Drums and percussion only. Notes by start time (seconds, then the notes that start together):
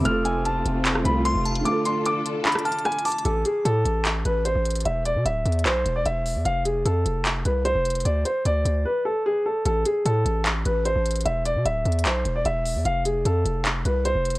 0.05 closed hi-hat
0.25 closed hi-hat
0.45 closed hi-hat
0.66 closed hi-hat
0.85 clap, closed hi-hat
0.95 cross-stick
1.05 closed hi-hat
1.25 closed hi-hat
1.45 closed hi-hat
1.55 closed hi-hat
1.65 closed hi-hat
1.85 closed hi-hat
2.06 closed hi-hat
2.26 closed hi-hat
2.45 clap, closed hi-hat
2.52 cross-stick, closed hi-hat
2.59 closed hi-hat
2.65 closed hi-hat
2.72 closed hi-hat
2.79 closed hi-hat
2.85 cross-stick, closed hi-hat
2.92 closed hi-hat
2.99 closed hi-hat
3.05 closed hi-hat, open hi-hat
3.12 closed hi-hat
3.19 closed hi-hat
3.25 closed hi-hat
3.45 closed hi-hat
3.65 closed hi-hat
3.86 closed hi-hat
4.05 clap, closed hi-hat
4.25 closed hi-hat
4.45 closed hi-hat
4.65 closed hi-hat
4.70 closed hi-hat
4.75 closed hi-hat
4.80 closed hi-hat
4.85 closed hi-hat
5.05 closed hi-hat
5.26 closed hi-hat
5.45 closed hi-hat
5.52 closed hi-hat
5.59 closed hi-hat
5.65 clap, closed hi-hat
5.85 closed hi-hat
6.05 closed hi-hat
6.26 open hi-hat
6.45 closed hi-hat
6.66 closed hi-hat
6.86 closed hi-hat
7.06 closed hi-hat
7.25 clap, closed hi-hat
7.45 closed hi-hat
7.65 closed hi-hat
7.85 closed hi-hat
7.90 closed hi-hat
7.95 closed hi-hat
8.00 closed hi-hat
8.05 closed hi-hat
8.25 closed hi-hat
8.46 closed hi-hat
8.66 closed hi-hat
9.65 closed hi-hat
9.85 closed hi-hat
10.05 closed hi-hat
10.26 closed hi-hat
10.45 clap, closed hi-hat
10.65 closed hi-hat
10.85 closed hi-hat
11.05 closed hi-hat
11.10 closed hi-hat
11.15 closed hi-hat
11.20 closed hi-hat
11.25 closed hi-hat
11.45 closed hi-hat
11.66 closed hi-hat
11.85 closed hi-hat
11.92 closed hi-hat
11.99 closed hi-hat
12.05 clap, closed hi-hat
12.25 closed hi-hat
12.45 closed hi-hat
12.66 open hi-hat
12.85 closed hi-hat
13.05 closed hi-hat
13.25 closed hi-hat
13.46 closed hi-hat
13.65 clap, closed hi-hat
13.85 closed hi-hat
14.05 closed hi-hat
14.25 closed hi-hat
14.30 closed hi-hat
14.35 closed hi-hat